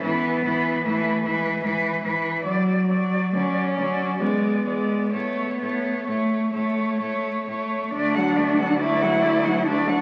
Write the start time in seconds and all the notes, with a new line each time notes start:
0.03 G#2 E3 B3 B4
0.44 G#2 E3 B4
0.85 G#2 E3 A3 B4
1.25 G#2 E3 G#3 B4
1.64 G#2 E3 B4
2.04 G#2 E3 B4
2.45 F#2 F#3 D5
2.88 F#2 F#3 D5
3.34 D2 F#3 C#4 D5
3.77 D2 F#3 D5
4.20 E2 G#3 B3 D5
4.66 E2 G#3 D5
5.13 A2 A3 B3 C#5
5.61 A2 A3 C#5
6.07 A2 A3 C#5
6.53 A2 A3 C#5
7.00 A2 A3 C#5
7.48 A2 A3 C#5
7.93 D2 A3 D4 D5
8.14 F#3 F#5
8.36 A3 D5
8.57 F#3 F#5
8.79 A3 E4 D5
9.01 F#3 F#5
9.22 A3 D5
9.44 F#3 F#5
9.65 A3 D4 D5
9.87 F#3 F#5